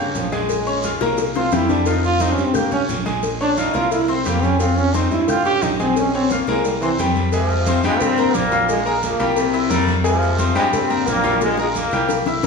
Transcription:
Already playing: fingered electric bass G2, grand piano C#4
0.00 trombone C#3, grand piano C#5 C#6
0.15 fingered electric bass A#1, trombone F3, cowbell, high conga, short guiro, maracas
0.32 grand piano G#3 G#4 G#5, trombone G#3, cowbell, high conga, short guiro, maracas
0.49 cowbell, high conga, long guiro, maracas
0.66 grand piano C#4 C#5 C#6, high conga, maracas
0.83 grand piano F4 F5 F6, cowbell, high conga, short guiro, maracas
1.00 fingered electric bass C2, grand piano A#3 A#4 A#5, cowbell, high bongo, high conga, short guiro, maracas
1.17 cowbell, high bongo, high conga, long guiro, maracas
1.34 grand piano C4 C5 C6, trombone F4, cowbell, low bongo, high conga, maracas
1.51 fingered electric bass F2, grand piano G3 G4 G5, trombone E4, cowbell, low bongo, high conga, short guiro, maracas
1.69 trombone D4, low bongo, high conga, short guiro, maracas
1.86 grand piano F3 F4 F5, trombone D#4, cowbell, high conga, long guiro, maracas
2.03 trombone F4, high conga, maracas
2.20 grand piano C4 C5 C6, trombone D#4, cowbell, high conga, short guiro, maracas
2.33 trombone C#4
2.38 fingered electric bass G2, high conga, short guiro, maracas
2.45 trombone C4
2.54 trombone A#3, grand piano G4 G5 G6, cowbell, high conga, low conga, long guiro, maracas
2.71 grand piano C#4 C#5 C#6, trombone C#4, cowbell, high conga, low conga, maracas
2.89 fingered electric bass A#1, cowbell, high conga, short guiro, maracas
3.06 grand piano G#3 G#4 G#5, cowbell, high conga, short guiro, maracas
3.23 cowbell, high conga, long guiro, maracas
3.40 grand piano C#4 C#5 C#6, trombone D4, high conga, maracas
3.57 trombone D#4, grand piano F4 F5 F6, cowbell, high conga, short guiro, maracas
3.74 fingered electric bass C2, grand piano A#3 A#4 A#5, trombone F4, cowbell, high conga, short guiro, maracas
3.91 trombone E4, cowbell, high conga, long guiro, maracas
4.08 trombone G3, grand piano C4 C5 C6, cowbell, high conga, maracas
4.25 fingered electric bass F2, grand piano G3 G4 G5, trombone A#3, cowbell, high conga, short guiro, maracas
4.43 trombone C#4, high conga, short guiro, maracas
4.59 grand piano F3 F4 F5, trombone C4, cowbell, high conga, long guiro, maracas
4.77 trombone C#4, high conga, maracas
4.94 grand piano C4 C5 C6, trombone D#4, cowbell, high conga, short guiro, maracas
5.11 fingered electric bass G2, trombone E4, high conga, short guiro, maracas
5.28 trombone F4, grand piano G4 G5 G6, cowbell, high conga, low conga, long guiro, maracas
5.45 grand piano C#4 C#5 C#6, trombone G4, cowbell, high conga, maracas
5.62 fingered electric bass A#1, trombone D#4, cowbell, high conga, short guiro, maracas
5.80 grand piano G#3 G#4 G#5, trombone C4, cowbell, high conga, short guiro, maracas
5.96 trombone C#4, cowbell, long guiro, maracas
6.13 trombone C4, grand piano C#4 C#5 C#6, high conga, maracas
6.30 trombone A#3, grand piano F4 F5 F6, cowbell, high conga, short guiro, maracas
6.47 fingered electric bass C2, trombone G#3, grand piano A#3 A#4 A#5, cowbell, high conga, short guiro, maracas
6.64 trombone G3, cowbell, high conga, long guiro, maracas
6.81 trombone E3, grand piano C4 C5 C6, cowbell, high conga, maracas
6.99 fingered electric bass F2, grand piano G3 G4 G5, cowbell, high conga, short guiro, maracas
7.16 high conga, short guiro, maracas
7.32 trombone section C3 F3, grand piano G#3 G#4 G#5, cowbell, long guiro, maracas
7.50 high conga, maracas
7.66 grand piano C4 C5 C6, cowbell, high conga, short guiro, maracas
7.83 fingered electric bass G2, trombone section F3 G#3, grand piano G3 G4 G5, high conga, short guiro, maracas
8.00 trombone section G3 C4, cowbell, high conga, low conga, long guiro, maracas
8.18 grand piano A#3 A#4 A#5, cowbell, high conga, maracas
8.34 fingered electric bass A#1, trombone section G3 A#3, cowbell, high conga, short guiro, maracas
8.51 grand piano F3 F4 F5, cowbell, high conga, short guiro, maracas
8.68 trombone section F3 G#3, cowbell, high conga, long guiro, maracas
8.85 trombone section F3 G#3, grand piano A#3 A#4 A#5, high conga, maracas
9.03 trombone section F3 A#3, cowbell, high conga, short guiro, maracas
9.20 fingered electric bass C2, grand piano G3 G4 G5, cowbell, high conga, short guiro, maracas
9.36 baritone saxophone C3, cowbell, high conga, long guiro, maracas
9.53 grand piano E4 E5 E6, cowbell, high conga, maracas
9.70 fingered electric bass F2, baritone saxophone G3, grand piano A#3 A#4 A#5, cowbell, high conga, short guiro, maracas
9.87 high conga, short guiro, maracas
10.04 trombone section C3 F3, grand piano G#3 G#4 G#5, cowbell, high conga, long guiro, maracas
10.22 maracas
10.38 grand piano C4 C5 C6, cowbell, high conga, short guiro, maracas
10.55 fingered electric bass G2, trombone section F3 G#3, grand piano G3 G4 G5, high conga, short guiro, maracas
10.73 trombone section G3 C4, cowbell, high conga, low conga, long guiro, maracas
10.90 grand piano A#3 A#4 A#5, cowbell, high conga, maracas
11.07 fingered electric bass A#1, trombone section G3 A#3, cowbell, high conga, short guiro, maracas
11.24 grand piano F3 F4 F5, cowbell, high conga, short guiro, maracas
11.41 trombone section F3 G#3, cowbell, high bongo, long guiro, maracas
11.58 trombone section F3 G#3, grand piano A#3 A#4 A#5, high bongo, high conga, maracas
11.75 trombone section F3 A#3, cowbell, high conga, short guiro, maracas
11.91 fingered electric bass C2, grand piano G3 G4 G5, cowbell, high conga, short guiro, maracas
12.09 cowbell, low bongo, high conga, long guiro, maracas
12.26 grand piano E4 E5 E6, cowbell, low bongo, high conga, maracas
12.43 fingered electric bass F2, grand piano A#3, cowbell, low bongo

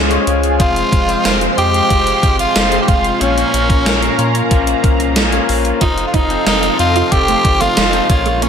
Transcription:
Already playing: analog synth bass C#2, overdriven electric guitar C#3 G#3 C#4, tine electric piano G#3 C#4 F4 G#4 C5 C#5, analog synth pad C#4 G#4 F5 G#5
0.10 tine electric piano G#3 C#4 F4 G#4 C#5, closed hi-hat
0.27 analog synth bass C#2, closed hi-hat
0.43 closed hi-hat
0.59 analog synth bass F1, overdriven electric guitar F2 C3 F3, tine electric piano G#3 C4 F4 G#4 C5, analog synth pad G#3 C5 C6, tenor saxophone F4, marimba F5, kick, closed hi-hat
0.76 closed hi-hat
0.92 analog synth bass F1, overdriven electric guitar C3 F3, kick, closed hi-hat
1.08 tine electric piano G#3 C4 F4 G#4 C5, closed hi-hat
1.25 analog synth bass F1, tenor saxophone F4, marimba F5, snare, closed hi-hat, tambourine
1.41 closed hi-hat
1.57 analog synth bass F2, tine electric piano G#3 C4 F4 G#4 D#5, tenor saxophone G4, marimba G5, closed hi-hat
1.74 closed hi-hat
1.89 analog synth bass F1, overdriven electric guitar F2 C3 F3, tine electric piano G#3 C4 F4 C5 D#5, kick, closed hi-hat
2.07 closed hi-hat
2.23 analog synth bass G1, kick, closed hi-hat
2.39 tenor saxophone F4, marimba F5, closed hi-hat
2.55 analog synth bass F1, overdriven electric guitar F2 C3 F3, snare, closed hi-hat, tambourine
2.71 tine electric piano G#3 C4 F4 G#4 C5, closed hi-hat
2.81 tenor saxophone G4, marimba G5
2.88 analog synth bass F1, tenor saxophone F4, marimba F5, kick, closed hi-hat
3.04 closed hi-hat
3.19 analog synth bass A#1, overdriven electric guitar A#2 F3, tine electric piano A#2 A#3 C#4 F4 A#4 C#5, analog synth pad C#4 A#4 A#5, tenor saxophone C#4, marimba C#5, closed hi-hat
3.24 overdriven electric guitar A#3
3.38 closed hi-hat
3.54 analog synth bass A#1, closed hi-hat
3.69 tine electric piano A#3 C#4 F4 A#4 C#5, kick, closed hi-hat
3.86 analog synth bass A#1, snare, closed hi-hat, tambourine
4.03 closed hi-hat
4.18 analog synth bass A#2, tine electric piano A#3 C#4 F4 A#4 C#5, closed hi-hat
4.35 closed hi-hat
4.50 analog synth bass A#1, overdriven electric guitar A#2 F3 A#3, tine electric piano A#3 C#4 F4 A#4 C5, kick, closed hi-hat
4.67 closed hi-hat
4.84 analog synth bass C2, kick, closed hi-hat
5.00 closed hi-hat
5.15 analog synth bass A#1, overdriven electric guitar A#2 F3 A#3, snare, closed hi-hat, tambourine
5.32 tine electric piano A#3 C#4 F4 A#4 C#5, closed hi-hat
5.49 analog synth bass A#1, open hi-hat
5.65 closed hi-hat
5.80 analog synth bass F1, overdriven electric guitar F2 C3, tine electric piano C4 D#4 F4 A4 C5, tenor saxophone D#4, clean electric guitar F4, analog synth pad A4 D#5 C6, marimba D#5, kick, closed hi-hat
5.85 overdriven electric guitar F3
5.98 muted clean electric guitar stroke, closed hi-hat
6.07 tenor saxophone F4, marimba F5
6.14 analog synth bass F1, clean electric guitar D#4, tenor saxophone D#4, marimba D#5, kick, closed hi-hat
6.30 tine electric piano C4 D#4 F4 A4 C5, closed hi-hat
6.46 analog synth bass F1, clean electric guitar D#4, tenor saxophone D#4, marimba D#5, snare, closed hi-hat, tambourine
6.63 muted clean electric guitar stroke, closed hi-hat
6.79 analog synth bass F2, tine electric piano C4 D#4 F4 A4 C5, tenor saxophone F4, marimba F5, closed hi-hat
6.96 clean electric guitar F4, closed hi-hat
7.11 analog synth bass F1, overdriven electric guitar F2 C3 F3, tine electric piano C4 D#4 F4 A4 C5, tenor saxophone G4, marimba G5, kick, closed hi-hat
7.28 clean electric guitar A3, closed hi-hat
7.44 analog synth bass G1, muted clean electric guitar stroke, kick, closed hi-hat
7.61 clean electric guitar A3, tenor saxophone F4, marimba F5, closed hi-hat
7.76 analog synth bass F1, overdriven electric guitar F2 C3 F3, clean electric guitar F3, snare, closed hi-hat, tambourine
7.93 tine electric piano C4 D#4 F4 A4 C5, closed hi-hat
8.09 analog synth bass A#1, tine electric piano A#2 A#3 C#4 F4 A#4 C#5, overdriven electric guitar A#2 F3 A#3, tenor saxophone F4, analog synth pad A#4 C#5 C#6, marimba F5, muted clean electric guitar stroke, kick, closed hi-hat
8.26 clean electric guitar G#3, closed hi-hat
8.42 clean electric guitar A#3, tenor saxophone C#4, marimba C#5, closed hi-hat

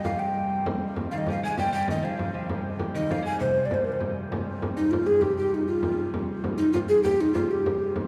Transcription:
Already playing: hurdy-gurdy C3 G3
0.04 recorder F5, frame drum
0.19 recorder G5, frame drum
0.64 hurdy-gurdy C3 G3, frame drum
0.96 frame drum
1.11 lute D#3, recorder F5
1.18 recorder D#5
1.26 lute F3, frame drum
1.31 recorder F5
1.42 lute G#3, recorder G#5, frame drum
1.57 lute G3, recorder G5, frame drum
1.72 lute G3, recorder G5
1.88 lute D#3, recorder D#5, frame drum
2.03 lute F3, recorder F5
2.19 frame drum
2.34 lute F3, frame drum
2.49 frame drum
2.79 frame drum
2.94 lute D#3, recorder D#5
3.10 lute F3, recorder F5, frame drum
3.22 lute G#3, recorder G#5, frame drum
3.39 lute C3, recorder C5, frame drum
3.65 recorder D5
3.71 recorder C5, frame drum
3.84 recorder A#4, frame drum
3.92 recorder C5
4.00 frame drum
4.30 hurdy-gurdy C3 G3, frame drum
4.62 frame drum
4.77 recorder D#4
4.91 recorder F4, frame drum
5.06 recorder G#4, frame drum
5.21 recorder G4, frame drum
5.38 recorder G4
5.54 recorder D#4
5.67 recorder F4
5.83 frame drum
5.99 frame drum
6.14 frame drum
6.44 frame drum
6.58 recorder D#4
6.73 recorder F4, frame drum
6.88 recorder G#4, frame drum
7.03 recorder G4, frame drum
7.21 recorder D#4
7.34 recorder F4, frame drum
7.50 recorder G4, frame drum
7.66 frame drum
7.93 hurdy-gurdy C3 G3, frame drum

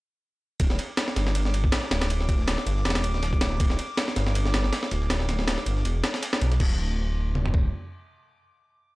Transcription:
0.60 detuned saw bass D1, synth texture D6, kick, closed hi-hat, ride
0.70 snare
0.79 closed hi-hat, ride
0.97 snare, closed hi-hat, ride
1.08 snare, closed hi-hat
1.16 detuned saw bass G1, snare, closed hi-hat, ride
1.27 snare
1.35 closed hi-hat, ride
1.45 snare
1.54 closed hi-hat, ride
1.64 kick
1.72 snare, open hi-hat, ride
1.83 snare
1.91 detuned saw bass D1, snare, closed hi-hat, ride
2.01 snare, ride
2.10 closed hi-hat, ride
2.21 snare
2.29 kick, closed hi-hat, ride
2.39 snare
2.48 snare, closed hi-hat, ride
2.58 snare, closed hi-hat
2.66 detuned saw bass G1, closed hi-hat, ride
2.77 snare
2.85 detuned saw bass E1, snare, closed hi-hat, ride
2.90 snare, ride
2.95 snare, ride
3.04 detuned saw bass D1, closed hi-hat, ride
3.14 snare
3.23 snare, closed hi-hat, ride
3.33 kick, closed hi-hat
3.41 snare, ride
3.60 detuned saw bass D1, kick, closed hi-hat, ride
3.70 snare
3.79 closed hi-hat, ride
3.97 snare, closed hi-hat, ride
4.08 snare, closed hi-hat
4.16 detuned saw bass G1, snare, closed hi-hat, ride
4.27 snare
4.35 closed hi-hat, ride
4.45 snare
4.54 snare, closed hi-hat, ride
4.64 snare
4.73 snare, open hi-hat, ride
4.83 snare
4.91 detuned saw bass D1, snare, closed hi-hat, ride
5.02 snare
5.10 snare, closed hi-hat, ride
5.20 snare
5.29 snare, closed hi-hat, ride
5.39 snare
5.48 snare, closed hi-hat, ride
5.58 snare, closed hi-hat
5.66 detuned saw bass G1, closed hi-hat, ride
5.77 snare
5.85 detuned saw bass E1, closed hi-hat, ride
6.04 snare, closed hi-hat, ride
6.14 snare, closed hi-hat
6.22 snare, closed hi-hat, ride
6.33 snare
6.41 detuned saw bass B1, closed hi-hat, ride
6.52 snare, ride
6.60 detuned saw bass D1, kick, crash
7.35 mid tom
7.46 floor tom
7.54 kick

